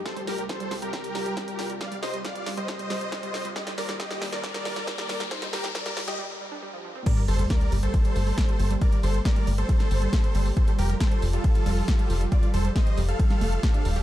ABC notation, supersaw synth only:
X:1
M:4/4
L:1/16
Q:1/4=137
K:Gm
V:1 name="Supersaw synth"
[Ac] z [GB] z [Ac]2 z [GB]8 z | [df] z [ce] z [df]2 z [ce]8 z | [Ge] z [Bd] z [Ge]2 z [Bd]8 z | [Ec] z [GB] z [Bd]2 z [Ge] z8 |
[Bd] z [Ac] z [Bd]2 z [Ac]8 z | [Bd] z [Ac] z [Bd]2 z [Ac]8 z | [Ac] z [GB] z [Ac]2 z [FA]8 z | [Fd] z [Ac] z [ce]2 z [Af]8 z |]